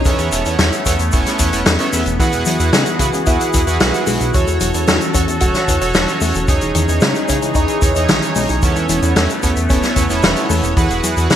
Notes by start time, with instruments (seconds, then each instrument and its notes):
Already playing: analog synth pad C#4
0.05 analog synth bass E2, analog synth pad A3 B3, analog polysynth B3 C#4 E4 A4 C#5, kick, closed hi-hat, shaker
0.19 analog synth bass E2, closed hi-hat, shaker
0.32 analog synth bass E1, analog polysynth B3 C#4 E4 A4 C#5, closed hi-hat, shaker
0.46 analog synth bass E2, analog polysynth B3 C#4 E4 A4 C#5, closed hi-hat, shaker
0.59 analog synth bass E2, analog polysynth B3 C#4 E4 A4 C#5, snare, closed hi-hat, shaker
0.72 closed hi-hat, shaker
0.86 analog synth bass E2, analog polysynth B3 C#4 E4 A4 C#5, kick, closed hi-hat, shaker
0.99 analog synth bass E2, closed hi-hat, shaker
1.12 analog synth bass E1, analog polysynth B3 C#4 E4 A4 C#5, kick, closed hi-hat, shaker
1.26 snare, closed hi-hat, shaker
1.39 analog synth bass E2, analog polysynth B3 C#4 E4 A4 C#5, kick, closed hi-hat, shaker
1.53 analog synth bass E1, analog polysynth B3 C#4 E4 A4 C#5, closed hi-hat, shaker
1.66 analog synth bass E2, snare, closed hi-hat, shaker
1.79 analog polysynth B3 C#4 E4 A4 C#5, closed hi-hat, shaker
1.93 analog synth bass E2, analog polysynth B3 C#4 E4 A4 E5, open hi-hat, shaker
2.06 analog synth bass E1, closed hi-hat, shaker
2.19 analog synth bass E2, synth arpeggio sound E3, analog synth pad E3 F#4 G#4, analog polysynth E4 F#4 G#4 B4 F#5, kick, closed hi-hat, shaker
2.33 analog synth bass E1, closed hi-hat, shaker
2.45 analog synth bass E2, synth arpeggio sound F#3, analog polysynth E4 F#4 G#4 B4 F#5, closed hi-hat, shaker
2.60 analog synth bass E2, analog polysynth E4 F#4 G#4 B4 F#5, closed hi-hat, shaker
2.73 analog synth bass C#3, synth arpeggio sound G#3, analog polysynth E4 F#4 G#4 B4 F#5, snare, closed hi-hat, shaker
2.86 closed hi-hat, shaker
2.99 analog synth bass C#3, synth arpeggio sound B3, analog polysynth E4 F#4 G#4 B4 F#5, kick, closed hi-hat, shaker
3.13 analog synth bass C#3, closed hi-hat, shaker
3.26 analog synth bass E2, analog polysynth E4 F#4 G#4 B4 F#5, synth arpeggio sound E4, kick, closed hi-hat, shaker
3.41 closed hi-hat, shaker
3.53 analog synth bass E2, synth arpeggio sound E3, analog polysynth E4 F#4 G#4 B4 F#5, kick, closed hi-hat, shaker
3.67 analog synth bass E2, analog polysynth E4 F#4 G#4 B4 F#5, closed hi-hat, shaker
3.80 analog synth bass B1, synth arpeggio sound F#3, analog polysynth E4 F#4 G#4 B4 F#5, snare, closed hi-hat, shaker
3.94 closed hi-hat, shaker
4.07 analog synth bass B1, synth arpeggio sound G#3, analog polysynth E4 F#4 G#4 B4 F#5, open hi-hat, shaker
4.20 analog synth bass B1, closed hi-hat, shaker
4.34 analog synth bass E2, synth arpeggio sound C#3, analog synth pad C#4 F#4 A4, analog polysynth F#4 A4 C#5, kick, closed hi-hat, shaker
4.47 analog synth bass E2, closed hi-hat, shaker
4.60 analog synth bass E1, synth arpeggio sound F#3, analog polysynth F#4 A4 C#5, closed hi-hat, shaker
4.74 analog synth bass E2, analog polysynth F#4 A4 C#5, closed hi-hat, shaker
4.87 analog synth bass E2, synth arpeggio sound A3, analog polysynth F#4 A4 C#5, snare, closed hi-hat, shaker
5.01 closed hi-hat, shaker
5.14 analog synth bass E2, synth arpeggio sound C#4, analog polysynth F#4 A4 C#5, kick, closed hi-hat, shaker
5.28 analog synth bass E2, closed hi-hat, shaker
5.40 analog synth bass E1, analog polysynth F#4 A4 C#5, synth arpeggio sound F#4, kick, closed hi-hat, shaker
5.54 snare, closed hi-hat, shaker
5.68 analog synth bass E2, synth arpeggio sound C#3, analog polysynth F#4 A4 C#5, kick, closed hi-hat, shaker
5.81 analog synth bass E1, analog polysynth F#4 A4 C#5, closed hi-hat, shaker
5.94 analog synth bass E1, synth arpeggio sound F#3, analog polysynth F#4 A4 C#5, snare, closed hi-hat, shaker
6.08 closed hi-hat, shaker
6.21 analog synth bass E2, synth arpeggio sound A3, analog polysynth F#4 A4 C#5, open hi-hat, shaker
6.34 analog synth bass E1, closed hi-hat, shaker
6.48 analog synth bass E2, synth arpeggio sound C#3, analog synth pad E3 D#4 G#4, analog polysynth D#4 G#4 C#5, kick, closed hi-hat, shaker
6.61 analog synth bass E1, closed hi-hat, shaker
6.75 analog synth bass E2, synth arpeggio sound D#3, analog polysynth D#4 G#4 C#5, closed hi-hat, shaker
6.88 analog synth bass E2, analog polysynth D#4 G#4 C#5, closed hi-hat, shaker
7.01 analog synth bass C#3, synth arpeggio sound G#3, analog polysynth D#4 G#4 C#5, snare, closed hi-hat, shaker
7.15 closed hi-hat, shaker
7.29 analog synth bass C#3, synth arpeggio sound C#4, analog polysynth D#4 G#4 C#5, kick, closed hi-hat, shaker
7.42 analog synth bass C#3, closed hi-hat, shaker
7.55 analog synth bass E2, analog polysynth D#4 G#4 C#5, synth arpeggio sound D#4, kick, closed hi-hat, shaker
7.68 closed hi-hat, shaker
7.82 analog synth bass E2, synth arpeggio sound C#3, analog polysynth D#4 G#4 C#5, kick, closed hi-hat, shaker
7.95 analog synth bass E2, analog polysynth D#4 G#4 C#5, closed hi-hat, shaker
8.08 analog synth bass B1, synth arpeggio sound D#3, analog polysynth D#4 G#4 C#5, snare, closed hi-hat, shaker
8.22 closed hi-hat, shaker
8.35 analog synth bass B1, synth arpeggio sound G#3, analog polysynth D#4 G#4 C#5, open hi-hat, shaker
8.49 analog synth bass B1, closed hi-hat, shaker
8.62 analog synth bass E2, synth arpeggio sound C#3, analog synth pad A3 B3, analog polysynth B3 C#4 E4 A4 C#5, kick, closed hi-hat, shaker
8.76 analog synth bass E2, closed hi-hat, shaker
8.89 analog synth bass E1, synth arpeggio sound E3, analog polysynth B3 C#4 E4 A4 C#5, closed hi-hat, shaker
9.02 analog synth bass E2, analog polysynth B3 C#4 E4 A4 C#5, closed hi-hat, shaker
9.16 analog synth bass E2, synth arpeggio sound A3, analog polysynth B3 C#4 E4 A4 C#5, snare, closed hi-hat, shaker
9.30 closed hi-hat, shaker
9.43 analog synth bass E2, synth arpeggio sound B3, analog polysynth B3 C#4 E4 A4 C#5, kick, closed hi-hat, shaker
9.56 analog synth bass E2, closed hi-hat, shaker
9.70 analog synth bass E1, analog polysynth B3 C#4 E4 A4 C#5, synth arpeggio sound C#4, kick, closed hi-hat, shaker
9.83 snare, closed hi-hat, shaker
9.96 analog synth bass E2, synth arpeggio sound C#3, analog polysynth B3 C#4 E4 A4 C#5, kick, closed hi-hat, shaker
10.10 analog synth bass E1, analog polysynth B3 C#4 E4 A4 C#5, closed hi-hat, shaker
10.23 analog synth bass E1, synth arpeggio sound E3, analog polysynth B3 C#4 E4 A4 C#5, snare, closed hi-hat, shaker
10.36 closed hi-hat, shaker
10.50 analog synth bass E2, synth arpeggio sound A3, analog polysynth B3 C#4 E4 A4 C#5, open hi-hat, shaker
10.63 analog synth bass E1, closed hi-hat, shaker
10.77 analog synth bass E2, synth arpeggio sound E3, analog synth pad E3 F#4 G#4, analog polysynth E4 F#4 G#4 B4 F#5, kick, closed hi-hat, shaker
10.90 analog synth bass E1, closed hi-hat, shaker
11.03 analog synth bass E2, synth arpeggio sound F#3, analog polysynth E4 F#4 G#4 B4 F#5, closed hi-hat, shaker
11.17 analog synth bass E2, analog polysynth E4 F#4 G#4 B4 F#5, closed hi-hat, shaker
11.30 analog synth bass C#3, synth arpeggio sound G#3, analog polysynth E4 F#4 G#4 B4 F#5, snare, closed hi-hat, shaker